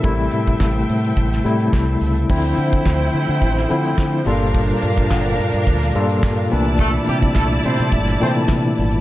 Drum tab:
CC |----------------|x---------------|----------------|----------------|
HH |x-xx--xxxxxx--ox|--xx--xxx-xx--ox|xxxx--xxxxxx-xox|x-xx-xxxxxxx-xox|
CP |----x-------x---|----x-------x---|----x-------x---|----x-------x---|
SD |----o----o--o---|----o----o--o---|----o----o--o---|----o----o--o---|
BD |o--oo---o---o---|o--oo---o---o---|o--oo---o---o---|o--oo---o---o---|